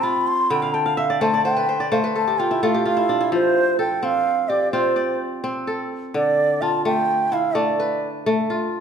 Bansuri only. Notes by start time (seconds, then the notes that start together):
0.03 B5
0.27 C6
0.50 B5
0.74 A5
0.98 F5
1.22 A5
1.45 G5
1.92 F5
2.17 A5
2.39 G5
2.64 F5
2.87 F5
3.35 C5
3.80 G5
4.04 F5
4.49 D5
4.72 C5
6.15 D5
6.62 A5
6.86 G5
7.33 F5
7.56 D5